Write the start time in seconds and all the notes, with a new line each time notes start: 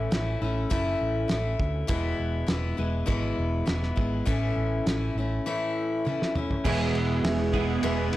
Already playing: A2 E3 A3 C#4 E4
0.11 A1 E3 A3 C#4 E4, snare, closed hi-hat
0.42 A1 A3 C#4 E4
0.70 F#1 A2 E3 A3 C#4 E4, kick, closed hi-hat
1.01 A1
1.28 A1 E3 A3 C#4 E4, snare, closed hi-hat
1.60 D2, kick
1.87 E1 E2 B2 E3 G#3 B3 E4, kick, closed hi-hat
2.19 E1
2.47 E1 E3 G#3 B3 E4, snare, closed hi-hat
2.77 E1 E3 G#3 B3 E4
3.06 G#1 E2 B2 E3 G#3 B3 E4, kick, closed hi-hat
3.38 E1
3.66 E1 E3 G#3 B3 E4, snare, closed hi-hat
3.83 snare
3.96 G#1 E3 G#3 B3 E4, kick
4.25 A1 A2 E3 A3 C#4 E4, kick, closed hi-hat
4.57 A1
4.86 A1 E3 A3 C#4 E4, snare, closed hi-hat
5.15 A1 C#4 E4
5.20 A3
5.46 A2 E3 A3 C#4 E4
6.05 E3 A3 C#4 E4, high tom
6.22 snare
6.35 A3 C#4 E4, mid tom
6.51 floor tom
6.64 E1 E2 B2 E3 G#3 B3 E4 G#4 B4 E5, kick, crash
6.69 G#4
6.94 E1, ride
7.23 E1 G#4 B4 E5, snare, ride
7.53 B2 E3 G#3 B3 E4 G#4, kick, ride
7.57 E2
7.83 E1 E2 B2 E3 G#3 B3 E4 G#4 B4 E5, ride
8.13 E1 G#3 B3 E4, ride